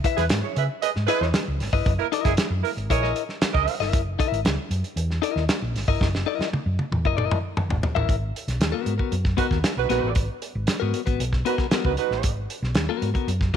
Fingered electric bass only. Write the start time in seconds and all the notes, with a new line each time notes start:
0.18 E2
0.31 G#2
0.57 C#3
0.96 G#2
1.21 E2
1.48 C#2
1.61 G#1
1.73 G1
1.86 F#1
2.25 F#1
2.38 muted fingered electric bass stroke
2.50 F#2
2.77 G#1
2.90 A#1
3.42 muted fingered electric bass stroke
3.55 C#2
3.80 G1
3.93 F#1
4.32 G#1
4.45 C#2
4.70 F#2
4.96 E2
5.36 D#2
5.62 A#1
5.75 G#1
5.88 G1
6.01 F#1
6.39 muted fingered electric bass stroke
6.53 muted fingered electric bass stroke
6.66 F#2
6.92 E2
7.05 F#1
7.56 muted fingered electric bass stroke
7.69 G#1
7.96 A1
8.09 G#1
8.48 B1
8.60 D#2
8.86 G#2
9.12 F#2
9.51 D#2
9.77 B1
9.90 A#1
10.03 A1
10.16 G#1
10.55 G#1
10.82 G#2
11.07 G#1
11.20 B1
11.72 muted fingered electric bass stroke
11.85 C#2
12.11 A1
12.24 G#1
12.62 B1
12.75 D#2
13.02 G#2
13.28 F#2